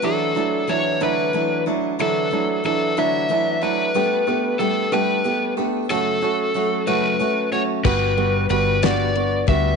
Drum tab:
CC |------|------|------|------|
RD |------|------|------|------|
SD |------|------|------|------|
BD |------|------|------|------|

CC |x-----|
RD |-xxxxx|
SD |---o--|
BD |o----o|